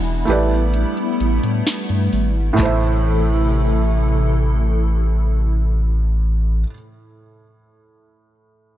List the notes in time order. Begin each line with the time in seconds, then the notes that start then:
Already playing: E1 E3 G#3 B3 D4 E4 F#4 G#4 D5
0.04 closed hi-hat
0.25 A1 G3 A3 B3 E4 G4, closed hi-hat
0.30 B4 D5
0.74 closed hi-hat
0.97 closed hi-hat
1.20 A1, closed hi-hat
1.44 A2, closed hi-hat
1.67 snare, closed hi-hat
1.89 G2, closed hi-hat
2.12 G#1, open hi-hat
2.53 A2 A3
2.58 A1 C3 E3 A3 E4 A4, kick, clap
2.62 C5 E5